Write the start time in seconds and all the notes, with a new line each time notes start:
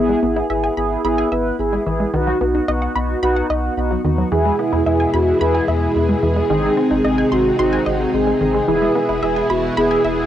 Already playing: G#1 B3 E4 G#4
0.09 G#3
0.23 G#1 B3 E4 G#4
0.36 E4
0.50 G#1 B3 E4 G#4 E5
0.64 G#5
0.77 G#1 B3 E4 G#4 B5
1.04 G#1 B3 E4 G#4 B5
1.18 G#5
1.32 G#1 B3 E4 B4 E5
1.59 G#1 B3 E4 G#4
1.73 G#3
1.86 A1 E3 B3 E4 G#4
2.00 G#3
2.14 B1 D#3 B3 D#4 F#4
2.27 F#3
2.41 B1 B3 D#4 F#4
2.55 D#4
2.68 B1 B3 D#4 F#4 D#5
2.82 F#5
2.95 B1 B3 D#4 F#4 B5
3.23 B1 B3 D#4 F#4 B5
3.36 F#5
3.50 B1 B3 D#4 F#4 D#5
3.77 B1 B3 D#4 F#4
3.91 F#3
4.04 D#2 D#3 B3 D#4 F#4
4.18 F#3
4.32 E2 B2 E3 G#3 B3 E4 G#4
4.45 G#3
4.59 B3 E4 G#4
4.73 E2 E4
4.86 E2 B3 E4 G#4 E5
5.00 G#5
5.14 E2 B3 E4 F#4 B5
5.41 E2 B3 E4 G#4 B5
5.54 G#5
5.68 E2 B3 E4 G#4 E5
5.95 E2 B3 E4 G#4
6.09 G#3
6.23 E2 E3 B3 E4 G#4
6.36 G#3
6.50 G#1 C3 D#3 C4 D#4 G#4
6.64 G#3
6.77 C4 D#4 G#4
6.91 G#1 D#4
7.05 G#1 C4 D#4 G#4 D#5
7.18 G#5
7.32 G#1 C4 D#4 F#4 C6
7.59 G#1 C4 D#4 F#4 C6
7.73 G#5
7.86 G#1 C4 D#4 F#4 D#5
8.14 G#1 C4 D#4 G#4
8.27 G#3
8.41 G#1 D#3 C4 D#4 G#4
8.54 G#3
8.68 E1 B2 E3 G#3 B3 E4 G#4
8.82 G#3
8.95 B3 E4 G#4
9.09 E1 E4
9.23 E1 B3 E4 G#4 E5
9.36 G#5
9.50 E1 B3 E4 F#4 B5
9.77 E1 B3 E4 G#4 B5
9.91 G#5
10.04 E1 B3 E4 G#4 E5